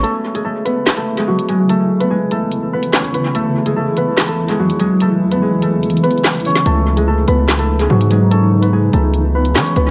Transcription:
Already playing: harp B3 C#4 F#4 B4 C#5
0.03 ambient pad C#3 E3 A3 E4, harp A3 A4, closed hi-hat
0.35 harp G#3 G#4, closed hi-hat
0.45 harp A3 A4
0.65 harp B3 B4, closed hi-hat
0.87 snare, clap, closed hi-hat
0.97 harp A3 A4, closed hi-hat
1.17 harp G#3 G#4, closed hi-hat
1.28 harp F#3 F#4
1.39 closed hi-hat
1.49 harp G#3 G#4, closed hi-hat
1.69 harp A3 A4, closed hi-hat
2.00 harp B3 B4, closed hi-hat
2.10 harp G#3 G#4
2.31 harp A3 A4, closed hi-hat
2.52 closed hi-hat
2.73 harp B3 B4
2.83 closed hi-hat
2.93 harp C#4 C#5, snare, clap
3.04 closed hi-hat
3.14 harp B3 B4, closed hi-hat
3.35 harp A3 A4, closed hi-hat
3.66 harp G#3 G#4, closed hi-hat
3.76 harp A3 A4
3.97 harp B3 B4, closed hi-hat
4.17 snare, clap, closed hi-hat
4.28 harp A3 A4, closed hi-hat
4.48 harp G#3 G#4, closed hi-hat
4.59 harp F#3 F#4
4.70 closed hi-hat
4.79 harp G#3 G#4, closed hi-hat
5.00 harp A3 A4, closed hi-hat
5.31 harp B3 B4, closed hi-hat
5.42 harp G#3 G#4
5.62 harp A3 A4, closed hi-hat
5.83 closed hi-hat
5.90 closed hi-hat
5.97 closed hi-hat
6.03 harp B3 B4, closed hi-hat
6.11 closed hi-hat
6.18 closed hi-hat
6.24 snare, clap
6.35 closed hi-hat
6.40 closed hi-hat
6.45 harp C#4 C#5, closed hi-hat, open hi-hat
6.50 closed hi-hat
6.55 snare
6.66 808-style bass C#2, harp A3 A4, ambient pad D#4, closed hi-hat
6.97 harp G#3 G#4, closed hi-hat
7.08 harp A3 A4
7.28 808-style bass C#2, harp B3 B4, closed hi-hat
7.49 snare, clap, closed hi-hat
7.59 harp A3 A4, closed hi-hat
7.79 harp G#3 G#4, closed hi-hat
7.90 808-style bass G#2, harp F#3 F#4
8.01 closed hi-hat
8.11 harp G#3 G#4, closed hi-hat
8.31 harp C#4 A4, closed hi-hat
8.62 harp B3 B4, closed hi-hat
8.73 harp G#3 G#4
8.93 808-style bass C#2, harp A3 A4, closed hi-hat
9.14 closed hi-hat
9.35 harp B3 B4
9.45 closed hi-hat
9.55 808-style bass E3, harp C#4 C#5, snare, clap
9.66 closed hi-hat
9.76 808-style bass C#2, harp B3 B4, closed hi-hat

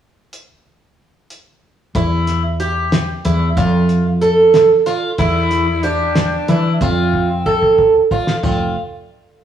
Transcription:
0.33 closed hi-hat
1.30 closed hi-hat
1.95 fretless electric bass E2, twelve-string acoustic guitar E4, kick, closed hi-hat
2.27 snare, closed hi-hat
2.60 twelve-string acoustic guitar G4, closed hi-hat
2.92 snare, closed hi-hat
3.25 fretless electric bass E2, twelve-string acoustic guitar E4, closed hi-hat
3.57 fretless electric bass F2, twelve-string acoustic guitar F4, kick, closed hi-hat
3.89 closed hi-hat
4.22 twelve-string acoustic guitar A4, closed hi-hat
4.54 snare, closed hi-hat
4.86 twelve-string acoustic guitar F4, snare, closed hi-hat
5.18 fretless electric bass E2, twelve-string acoustic guitar E4, alto saxophone E4, kick, closed hi-hat
5.51 snare, closed hi-hat
5.83 alto saxophone D4, twelve-string acoustic guitar G4, closed hi-hat
6.15 snare, closed hi-hat
6.48 fretless electric bass E3, twelve-string acoustic guitar E4, closed hi-hat
6.81 fretless electric bass F2, alto saxophone C4, twelve-string acoustic guitar F4, kick, closed hi-hat
7.13 kick
7.46 twelve-string acoustic guitar A4, kick
7.62 kick
7.78 kick
8.11 twelve-string acoustic guitar F4, kick
8.27 snare
8.43 fretless electric bass F1, alto saxophone C4, twelve-string acoustic guitar F4, kick, floor tom, splash

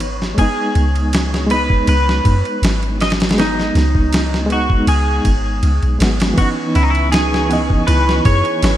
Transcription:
Already playing: 808-style bass G#1, reed electric piano E3 B3 D#4, synth texture C#5
0.00 ride
0.22 snare
0.34 reed electric piano G#3 B3, kick, ride
0.39 reed electric piano D#4, clean electric guitar G#4
0.75 808-style bass C#2, ride
0.96 ride
1.13 snare, ride
1.34 snare
1.47 reed electric piano G#3, ride
1.51 reed electric piano B3 D#4, clean electric guitar B4
1.70 kick
1.87 808-style bass C#2, clean electric guitar B4, ride
2.09 snare
2.25 808-style bass F#2, kick, ride
2.45 ride
2.62 808-style bass G#1, snare, ride
2.83 ride
3.00 clean electric guitar D#5, snare, ride
3.10 snare, ride
3.20 snare, ride
3.29 snare, ride
3.34 reed electric piano G#3 B3, ride
3.39 clean electric guitar D#4, reed electric piano D#4, snare
3.59 snare
3.75 808-style bass C#2, snare, ride
3.95 kick
4.13 snare, ride
4.34 snare
4.46 reed electric piano G#3 B3
4.50 reed electric piano D#4, clean electric guitar F#4, ride
4.70 kick
4.87 808-style bass C#2, clean electric guitar G#4, ride
5.25 808-style bass G#1, kick, ride
5.63 808-style bass C#2, ride
5.83 808-style bass B1, ride
5.99 808-style bass G#1, reed electric piano G#3 B3 F#4, snare, ride
6.20 snare, ride
6.34 reed electric piano E3 B3, celesta C#4, kick, ride
6.38 reed electric piano D#4, clean electric guitar F#4, string section B4 G#5 C#6
6.75 808-style bass C#2, celesta C#4, clean electric guitar E4, ride
6.83 clean electric guitar D#4
6.90 clean electric guitar E4
6.95 ride
7.12 celesta D#4, clean electric guitar G#4, snare, ride
7.34 snare
7.46 reed electric piano E3 B3
7.50 celesta C#4, reed electric piano D#5, ride
7.70 kick
7.87 808-style bass C#2, celesta E4, clean electric guitar B4, ride
8.09 snare
8.25 808-style bass F#2, celesta G#4, clean electric guitar C#5, kick, ride
8.45 ride
8.63 808-style bass G#1, snare, ride

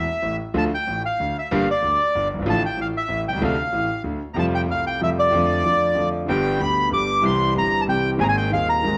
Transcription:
Already playing: bandoneon E5
0.22 grand piano A1 A2
0.54 grand piano D2 D3 F3 A3 F4, bandoneon A5
0.74 bandoneon G5
0.87 grand piano A1 A2
1.06 bandoneon F5
1.20 grand piano D2 D3
1.38 bandoneon E5
1.51 grand piano G1 G2 D3 G3 A#3 G4, bandoneon F5
1.71 bandoneon D5
1.82 grand piano D2 D3
2.15 grand piano G1 G2
2.34 grand piano F#1
2.39 grand piano G1 G#1
2.46 grand piano A1 A2 D3 F3 A3 F4, bandoneon A5
2.66 bandoneon G5
2.77 grand piano A1 A2
2.81 bandoneon F5
2.97 bandoneon E5
3.08 grand piano A1 A2
3.28 grand piano B1, bandoneon G5
3.33 grand piano C2
3.37 grand piano C#2
3.41 grand piano D2 C3 D3 F3 A3 D4, bandoneon F5
3.73 grand piano A1 A2
4.04 grand piano D2 D3
4.34 grand piano F2 C3 F3 G3 A3, bandoneon A#5
4.38 grand piano F4, bandoneon A5
4.55 bandoneon G5
4.67 grand piano C2 C3 G3 A3 F4, bandoneon F5
4.87 bandoneon G5
4.99 grand piano F2 C3 F3 G3 A3 F4
5.03 bandoneon E5
5.19 bandoneon D5
5.32 grand piano F2 D3 F3 A3 F4
5.64 grand piano F2 D3 F3 A3 F4
5.95 grand piano F2 D3 F3 A3 F4
6.26 grand piano G1 G2 D3 G3 B3, bandoneon G5
6.31 grand piano G4
6.59 grand piano D2 D3 G3 B3 G4, bandoneon B5
6.89 grand piano G1 G2 D3 G3 B3 G4
6.93 bandoneon D6
7.21 grand piano C2 C3 E3 G3 C4, bandoneon C6
7.25 grand piano G4
7.54 grand piano G1 G2 E3 G3 C4
7.58 grand piano G4, bandoneon A#5
7.81 grand piano E3, bandoneon A5
7.86 grand piano C2 C3 G3 C4 G4, bandoneon G5
8.17 grand piano G#1 G#2 D#3 A#3 C4 G#4, bandoneon G#5
8.23 bandoneon A#5
8.29 bandoneon G#5
8.37 bandoneon G5
8.50 grand piano D#1 D#2 D#3 A#3 C4 G#4, bandoneon F5
8.69 bandoneon A#5
8.82 grand piano G#1 G#2 D#3 A#3 C4
8.87 grand piano G#4

